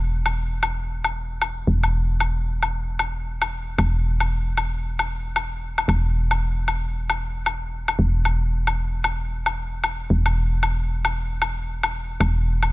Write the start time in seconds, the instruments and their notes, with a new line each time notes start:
Already playing: fm bass E1
0.26 low woodblock
0.63 low woodblock
1.04 low woodblock
1.42 low woodblock
1.67 fm bass E1
1.83 low woodblock
2.20 low woodblock
2.63 low woodblock
2.99 low woodblock
3.42 low woodblock
3.78 fm bass E1, low woodblock
4.20 low woodblock
4.57 low woodblock
4.99 low woodblock
5.36 low woodblock
5.78 low woodblock
5.88 fm bass E1, low woodblock
6.31 low woodblock
6.68 low woodblock
7.10 low woodblock
7.46 low woodblock
7.88 low woodblock
7.99 fm bass E1
8.25 low woodblock
8.67 low woodblock
9.04 low woodblock
9.46 low woodblock
9.84 low woodblock
10.10 fm bass E1
10.26 low woodblock
10.63 low woodblock
11.05 low woodblock
11.42 low woodblock
11.83 low woodblock
12.20 fm bass E1, low woodblock
12.63 low woodblock